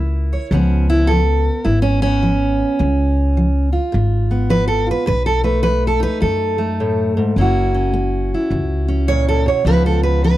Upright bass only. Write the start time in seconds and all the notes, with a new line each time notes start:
Already playing: C#2
0.51 C#2
1.66 G#1
2.80 C#2
3.94 G#1
5.08 B1
6.22 F#2
7.36 F#1
8.51 C#2
9.65 C#2